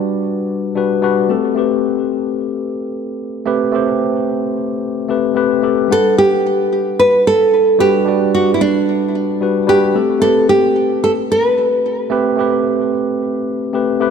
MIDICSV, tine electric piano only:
0, 0, Header, 1, 2, 480
1, 0, Start_track
1, 0, Tempo, 540541
1, 1402, Time_signature, 4, 2, 24, 8
1, 12523, End_track
2, 0, Start_track
2, 0, Title_t, "Tine electric piano"
2, 0, Program_c, 0, 4
2, 0, Control_c, 0, 64, 127
2, 0, Note_on_c, 0, 55, 84
2, 0, Note_on_c, 0, 62, 78
2, 0, Note_on_c, 0, 66, 77
2, 0, Note_on_c, 0, 71, 112
2, 0, Note_on_c, 0, 74, 95
2, 641, Note_off_c, 0, 55, 0
2, 648, Note_off_c, 0, 62, 0
2, 653, Note_off_c, 0, 66, 0
2, 659, Note_off_c, 0, 74, 0
2, 667, Note_on_c, 0, 55, 79
2, 673, Note_on_c, 0, 62, 74
2, 682, Note_on_c, 0, 66, 78
2, 688, Note_off_c, 0, 71, 0
2, 688, Note_on_c, 0, 71, 90
2, 887, Note_off_c, 0, 55, 0
2, 890, Note_off_c, 0, 62, 0
2, 895, Note_off_c, 0, 66, 0
2, 898, Note_off_c, 0, 71, 0
2, 905, Note_on_c, 0, 55, 92
2, 910, Note_on_c, 0, 62, 81
2, 918, Note_on_c, 0, 66, 88
2, 925, Note_on_c, 0, 71, 100
2, 1126, Note_off_c, 0, 55, 0
2, 1129, Note_off_c, 0, 62, 0
2, 1133, Note_off_c, 0, 66, 0
2, 1136, Note_off_c, 0, 71, 0
2, 1144, Note_on_c, 0, 57, 82
2, 1149, Note_on_c, 0, 60, 79
2, 1155, Note_on_c, 0, 67, 76
2, 1162, Note_on_c, 0, 69, 93
2, 1173, Control_c, 0, 64, 0
2, 1339, Control_c, 0, 64, 127
2, 1363, Note_off_c, 0, 57, 0
2, 1368, Note_off_c, 0, 60, 0
2, 1371, Note_off_c, 0, 67, 0
2, 1374, Note_on_c, 0, 57, 79
2, 1375, Note_off_c, 0, 69, 0
2, 1385, Note_on_c, 0, 60, 72
2, 1399, Note_on_c, 0, 67, 73
2, 1408, Note_on_c, 0, 71, 83
2, 3041, Note_off_c, 0, 57, 0
2, 3046, Note_off_c, 0, 60, 0
2, 3053, Note_off_c, 0, 67, 0
2, 3058, Note_off_c, 0, 71, 0
2, 3067, Note_on_c, 0, 57, 103
2, 3072, Note_on_c, 0, 60, 92
2, 3078, Note_on_c, 0, 67, 95
2, 3085, Note_on_c, 0, 71, 113
2, 3287, Note_off_c, 0, 57, 0
2, 3290, Note_off_c, 0, 60, 0
2, 3293, Note_off_c, 0, 67, 0
2, 3296, Note_off_c, 0, 71, 0
2, 3301, Note_on_c, 0, 57, 92
2, 3315, Note_on_c, 0, 60, 86
2, 3328, Note_on_c, 0, 67, 79
2, 3339, Note_on_c, 0, 72, 99
2, 4484, Note_off_c, 0, 57, 0
2, 4491, Note_off_c, 0, 60, 0
2, 4498, Note_off_c, 0, 67, 0
2, 4503, Note_off_c, 0, 72, 0
2, 4515, Note_on_c, 0, 57, 86
2, 4522, Note_on_c, 0, 60, 71
2, 4528, Note_on_c, 0, 67, 74
2, 4533, Note_on_c, 0, 71, 86
2, 4731, Note_off_c, 0, 57, 0
2, 4734, Note_off_c, 0, 60, 0
2, 4737, Note_off_c, 0, 67, 0
2, 4740, Note_off_c, 0, 71, 0
2, 4750, Note_on_c, 0, 57, 86
2, 4757, Note_on_c, 0, 60, 85
2, 4765, Note_on_c, 0, 67, 78
2, 4767, Note_on_c, 0, 71, 102
2, 4969, Note_off_c, 0, 57, 0
2, 4972, Note_off_c, 0, 60, 0
2, 4976, Note_off_c, 0, 67, 0
2, 4977, Note_off_c, 0, 71, 0
2, 4993, Note_on_c, 0, 57, 80
2, 4999, Note_on_c, 0, 60, 76
2, 5004, Note_on_c, 0, 67, 74
2, 5010, Note_on_c, 0, 69, 94
2, 5210, Note_off_c, 0, 57, 0
2, 5213, Note_off_c, 0, 60, 0
2, 5216, Note_off_c, 0, 67, 0
2, 5219, Note_off_c, 0, 69, 0
2, 5221, Note_on_c, 0, 55, 75
2, 5232, Note_on_c, 0, 62, 72
2, 5247, Note_on_c, 0, 78, 70
2, 5255, Control_c, 0, 64, 0
2, 5256, Note_on_c, 0, 71, 87
2, 5403, Control_c, 0, 64, 127
2, 6884, Note_off_c, 0, 55, 0
2, 6890, Note_off_c, 0, 62, 0
2, 6897, Note_off_c, 0, 78, 0
2, 6902, Note_off_c, 0, 71, 0
2, 6914, Note_on_c, 0, 55, 105
2, 6917, Note_on_c, 0, 62, 90
2, 6924, Note_on_c, 0, 66, 93
2, 6932, Note_on_c, 0, 71, 117
2, 7130, Note_off_c, 0, 55, 0
2, 7132, Note_off_c, 0, 62, 0
2, 7136, Note_off_c, 0, 66, 0
2, 7140, Note_off_c, 0, 71, 0
2, 7146, Note_on_c, 0, 55, 90
2, 7153, Note_on_c, 0, 62, 87
2, 7170, Note_on_c, 0, 66, 79
2, 7180, Note_on_c, 0, 74, 97
2, 8327, Note_off_c, 0, 55, 0
2, 8330, Note_off_c, 0, 62, 0
2, 8339, Note_off_c, 0, 66, 0
2, 8344, Note_off_c, 0, 74, 0
2, 8356, Note_on_c, 0, 55, 85
2, 8363, Note_on_c, 0, 62, 73
2, 8365, Note_on_c, 0, 66, 75
2, 8372, Note_on_c, 0, 71, 93
2, 8572, Note_off_c, 0, 55, 0
2, 8575, Note_off_c, 0, 62, 0
2, 8576, Note_off_c, 0, 66, 0
2, 8580, Note_off_c, 0, 71, 0
2, 8585, Note_on_c, 0, 55, 90
2, 8593, Note_on_c, 0, 62, 90
2, 8599, Note_on_c, 0, 66, 86
2, 8604, Note_on_c, 0, 71, 109
2, 8806, Note_off_c, 0, 55, 0
2, 8810, Note_off_c, 0, 62, 0
2, 8813, Note_off_c, 0, 66, 0
2, 8816, Note_off_c, 0, 71, 0
2, 8827, Note_on_c, 0, 57, 86
2, 8833, Note_on_c, 0, 60, 83
2, 8839, Note_on_c, 0, 67, 77
2, 8843, Note_on_c, 0, 69, 98
2, 8854, Control_c, 0, 64, 0
2, 9027, Control_c, 0, 64, 127
2, 9047, Note_off_c, 0, 57, 0
2, 9050, Note_off_c, 0, 60, 0
2, 9053, Note_off_c, 0, 67, 0
2, 9055, Note_off_c, 0, 69, 0
2, 9058, Note_on_c, 0, 57, 77
2, 9068, Note_on_c, 0, 60, 75
2, 9081, Note_on_c, 0, 67, 69
2, 9091, Note_on_c, 0, 71, 89
2, 10723, Note_off_c, 0, 57, 0
2, 10728, Note_off_c, 0, 60, 0
2, 10734, Note_off_c, 0, 67, 0
2, 10739, Note_off_c, 0, 71, 0
2, 10745, Note_on_c, 0, 57, 105
2, 10750, Note_on_c, 0, 60, 92
2, 10758, Note_on_c, 0, 67, 97
2, 10762, Note_on_c, 0, 71, 114
2, 10966, Note_off_c, 0, 57, 0
2, 10969, Note_off_c, 0, 60, 0
2, 10973, Note_off_c, 0, 67, 0
2, 10975, Note_off_c, 0, 71, 0
2, 10978, Note_on_c, 0, 57, 84
2, 10990, Note_on_c, 0, 60, 81
2, 11001, Note_on_c, 0, 67, 81
2, 11016, Note_on_c, 0, 71, 95
2, 12163, Note_off_c, 0, 57, 0
2, 12169, Note_off_c, 0, 60, 0
2, 12174, Note_off_c, 0, 67, 0
2, 12182, Note_off_c, 0, 71, 0
2, 12192, Note_on_c, 0, 57, 89
2, 12199, Note_on_c, 0, 60, 78
2, 12205, Note_on_c, 0, 67, 78
2, 12212, Note_on_c, 0, 71, 90
2, 12410, Note_off_c, 0, 57, 0
2, 12413, Note_off_c, 0, 60, 0
2, 12416, Note_off_c, 0, 67, 0
2, 12420, Note_off_c, 0, 71, 0
2, 12433, Note_on_c, 0, 57, 89
2, 12437, Note_on_c, 0, 60, 87
2, 12442, Note_on_c, 0, 67, 94
2, 12450, Note_on_c, 0, 71, 106
2, 12523, Note_off_c, 0, 57, 0
2, 12523, Note_off_c, 0, 60, 0
2, 12523, Note_off_c, 0, 67, 0
2, 12523, Note_off_c, 0, 71, 0
2, 12523, End_track
0, 0, End_of_file